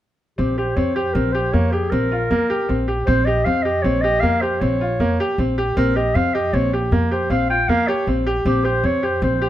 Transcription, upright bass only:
0, 0, Header, 1, 2, 480
1, 0, Start_track
1, 0, Tempo, 384369
1, 480, Time_signature, 7, 2, 24, 8
1, 11855, End_track
2, 0, Start_track
2, 0, Title_t, "Upright bass"
2, 0, Program_c, 0, 32
2, 483, Note_on_c, 0, 34, 77
2, 921, Note_off_c, 0, 34, 0
2, 955, Note_on_c, 0, 41, 74
2, 1397, Note_off_c, 0, 41, 0
2, 1435, Note_on_c, 0, 34, 81
2, 1877, Note_off_c, 0, 34, 0
2, 1917, Note_on_c, 0, 41, 63
2, 2358, Note_off_c, 0, 41, 0
2, 2398, Note_on_c, 0, 34, 79
2, 2839, Note_off_c, 0, 34, 0
2, 2881, Note_on_c, 0, 41, 73
2, 3101, Note_off_c, 0, 41, 0
2, 3363, Note_on_c, 0, 34, 69
2, 3802, Note_off_c, 0, 34, 0
2, 3844, Note_on_c, 0, 34, 86
2, 4282, Note_off_c, 0, 34, 0
2, 4325, Note_on_c, 0, 41, 75
2, 4763, Note_off_c, 0, 41, 0
2, 4799, Note_on_c, 0, 34, 71
2, 5239, Note_off_c, 0, 34, 0
2, 5278, Note_on_c, 0, 41, 70
2, 5719, Note_off_c, 0, 41, 0
2, 5762, Note_on_c, 0, 34, 81
2, 6201, Note_off_c, 0, 34, 0
2, 6239, Note_on_c, 0, 41, 67
2, 6460, Note_off_c, 0, 41, 0
2, 6721, Note_on_c, 0, 34, 74
2, 7161, Note_off_c, 0, 34, 0
2, 7203, Note_on_c, 0, 34, 78
2, 7642, Note_off_c, 0, 34, 0
2, 7679, Note_on_c, 0, 41, 78
2, 8119, Note_off_c, 0, 41, 0
2, 8159, Note_on_c, 0, 34, 80
2, 8599, Note_off_c, 0, 34, 0
2, 8636, Note_on_c, 0, 41, 68
2, 9077, Note_off_c, 0, 41, 0
2, 9114, Note_on_c, 0, 34, 73
2, 9556, Note_off_c, 0, 34, 0
2, 9596, Note_on_c, 0, 41, 68
2, 9817, Note_off_c, 0, 41, 0
2, 10076, Note_on_c, 0, 34, 67
2, 10517, Note_off_c, 0, 34, 0
2, 10557, Note_on_c, 0, 34, 78
2, 10997, Note_off_c, 0, 34, 0
2, 11035, Note_on_c, 0, 41, 76
2, 11475, Note_off_c, 0, 41, 0
2, 11512, Note_on_c, 0, 34, 79
2, 11855, Note_off_c, 0, 34, 0
2, 11855, End_track
0, 0, End_of_file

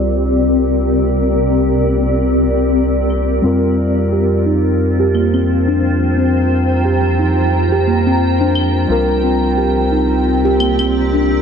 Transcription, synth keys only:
0, 0, Header, 1, 2, 480
1, 0, Start_track
1, 0, Tempo, 681818
1, 503, Time_signature, 4, 2, 24, 8
1, 8038, End_track
2, 0, Start_track
2, 0, Title_t, "Synth keys"
2, 0, Program_c, 0, 88
2, 0, Control_c, 0, 64, 127
2, 0, Note_on_c, 0, 55, 72
2, 0, Note_on_c, 0, 60, 58
2, 0, Note_on_c, 0, 65, 64
2, 0, Note_on_c, 0, 70, 72
2, 2390, Note_off_c, 0, 55, 0
2, 2394, Note_off_c, 0, 60, 0
2, 2398, Note_off_c, 0, 65, 0
2, 2403, Note_off_c, 0, 70, 0
2, 2408, Note_on_c, 0, 55, 65
2, 2417, Note_on_c, 0, 60, 63
2, 2426, Note_on_c, 0, 65, 61
2, 2430, Control_c, 0, 64, 0
2, 2435, Note_on_c, 0, 70, 74
2, 2574, Control_c, 0, 64, 127
2, 6230, Note_off_c, 0, 55, 0
2, 6235, Note_off_c, 0, 60, 0
2, 6239, Note_off_c, 0, 65, 0
2, 6244, Note_off_c, 0, 70, 0
2, 6248, Note_on_c, 0, 55, 68
2, 6256, Note_on_c, 0, 60, 64
2, 6266, Note_on_c, 0, 65, 63
2, 6273, Control_c, 0, 64, 0
2, 6276, Note_on_c, 0, 70, 75
2, 6396, Control_c, 0, 64, 127
2, 8038, Note_off_c, 0, 55, 0
2, 8038, Note_off_c, 0, 60, 0
2, 8038, Note_off_c, 0, 65, 0
2, 8038, Note_off_c, 0, 70, 0
2, 8038, End_track
0, 0, End_of_file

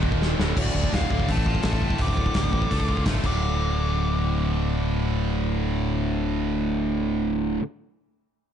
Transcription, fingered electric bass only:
0, 0, Header, 1, 2, 480
1, 0, Start_track
1, 0, Key_signature, -1, "minor"
1, 0, Tempo, 356506
1, 771, Time_signature, 4, 2, 24, 8
1, 11486, End_track
2, 0, Start_track
2, 0, Title_t, "Fingered electric bass"
2, 0, Program_c, 0, 33
2, 0, Note_on_c, 0, 27, 101
2, 474, Note_off_c, 0, 27, 0
2, 529, Note_on_c, 0, 26, 92
2, 753, Note_off_c, 0, 26, 0
2, 759, Note_on_c, 0, 26, 92
2, 982, Note_off_c, 0, 26, 0
2, 1010, Note_on_c, 0, 26, 80
2, 1228, Note_off_c, 0, 26, 0
2, 1249, Note_on_c, 0, 26, 89
2, 1467, Note_off_c, 0, 26, 0
2, 1487, Note_on_c, 0, 26, 83
2, 1706, Note_off_c, 0, 26, 0
2, 1737, Note_on_c, 0, 33, 81
2, 2169, Note_off_c, 0, 33, 0
2, 2210, Note_on_c, 0, 33, 95
2, 2428, Note_off_c, 0, 33, 0
2, 2445, Note_on_c, 0, 31, 90
2, 2665, Note_off_c, 0, 31, 0
2, 2682, Note_on_c, 0, 26, 94
2, 3121, Note_off_c, 0, 26, 0
2, 3161, Note_on_c, 0, 26, 81
2, 3382, Note_off_c, 0, 26, 0
2, 3398, Note_on_c, 0, 33, 78
2, 3620, Note_off_c, 0, 33, 0
2, 3651, Note_on_c, 0, 37, 86
2, 4086, Note_off_c, 0, 37, 0
2, 4116, Note_on_c, 0, 26, 87
2, 4340, Note_off_c, 0, 26, 0
2, 4365, Note_on_c, 0, 26, 87
2, 10203, Note_off_c, 0, 26, 0
2, 11486, End_track
0, 0, End_of_file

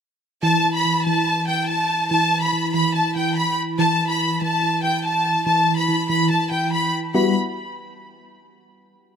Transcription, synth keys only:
0, 0, Header, 1, 2, 480
1, 0, Start_track
1, 0, Key_signature, 1, "minor"
1, 0, Tempo, 419580
1, 493, Time_signature, 4, 2, 24, 8
1, 10480, End_track
2, 0, Start_track
2, 0, Title_t, "Synth keys"
2, 0, Program_c, 0, 88
2, 489, Note_on_c, 0, 52, 88
2, 723, Note_off_c, 0, 52, 0
2, 735, Control_c, 0, 64, 127
2, 736, Note_on_c, 0, 52, 77
2, 960, Note_off_c, 0, 52, 0
2, 973, Note_on_c, 0, 52, 76
2, 1203, Note_off_c, 0, 52, 0
2, 1217, Note_on_c, 0, 52, 87
2, 1443, Note_off_c, 0, 52, 0
2, 1457, Note_on_c, 0, 52, 72
2, 1681, Note_off_c, 0, 52, 0
2, 1694, Note_on_c, 0, 52, 68
2, 2399, Note_off_c, 0, 52, 0
2, 2413, Note_on_c, 0, 52, 89
2, 2637, Note_off_c, 0, 52, 0
2, 2651, Note_on_c, 0, 52, 73
2, 2877, Note_off_c, 0, 52, 0
2, 2891, Note_on_c, 0, 52, 78
2, 3121, Note_off_c, 0, 52, 0
2, 3135, Note_on_c, 0, 52, 86
2, 3365, Note_off_c, 0, 52, 0
2, 3378, Note_on_c, 0, 52, 75
2, 3598, Note_off_c, 0, 52, 0
2, 3611, Note_on_c, 0, 52, 75
2, 4316, Note_off_c, 0, 52, 0
2, 4330, Note_on_c, 0, 52, 93
2, 4347, Control_c, 0, 64, 0
2, 4548, Control_c, 0, 64, 127
2, 4560, Note_off_c, 0, 52, 0
2, 4574, Note_on_c, 0, 52, 80
2, 4803, Note_off_c, 0, 52, 0
2, 4816, Note_on_c, 0, 52, 69
2, 5038, Note_off_c, 0, 52, 0
2, 5052, Note_on_c, 0, 52, 87
2, 5283, Note_off_c, 0, 52, 0
2, 5297, Note_on_c, 0, 52, 76
2, 5518, Note_off_c, 0, 52, 0
2, 5532, Note_on_c, 0, 52, 74
2, 6237, Note_off_c, 0, 52, 0
2, 6250, Note_on_c, 0, 52, 96
2, 6484, Note_off_c, 0, 52, 0
2, 6498, Note_on_c, 0, 52, 72
2, 6716, Note_off_c, 0, 52, 0
2, 6730, Note_on_c, 0, 52, 80
2, 6958, Note_off_c, 0, 52, 0
2, 6972, Note_on_c, 0, 52, 99
2, 7202, Note_off_c, 0, 52, 0
2, 7450, Note_on_c, 0, 52, 76
2, 8172, Note_off_c, 0, 52, 0
2, 8174, Note_on_c, 0, 55, 88
2, 8174, Note_on_c, 0, 59, 81
2, 8174, Note_on_c, 0, 64, 80
2, 8174, Note_on_c, 0, 66, 99
2, 8185, Control_c, 0, 64, 0
2, 8397, Note_off_c, 0, 55, 0
2, 8397, Note_off_c, 0, 59, 0
2, 8397, Note_off_c, 0, 64, 0
2, 8397, Note_off_c, 0, 66, 0
2, 10480, End_track
0, 0, End_of_file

